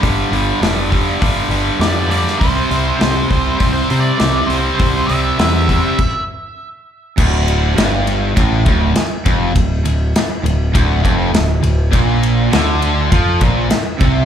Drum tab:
CC |----------------|----------------|--------x-------|x---------------|
RD |----------------|----------------|----------------|--x-x-x-x-x-x-x-|
HH |o-o-o-o-o-o-o-o-|o-o-o-o-o-o-o-o-|o-o-o-o---------|----------------|
SD |----o-------o--o|----o-------o---|----o-----------|----o-------o---|
BD |o-----o-o-------|o-----o-o-------|o-----o-o-------|o-------o-o---o-|

CC |----------------|----------------|
RD |x-x-x-x-x-x-x-x-|x-x-x-x-x-x-x-x-|
HH |----------------|----------------|
SD |----o-------o---|----o-------o---|
BD |o-------o-o-----|o-------o-o---o-|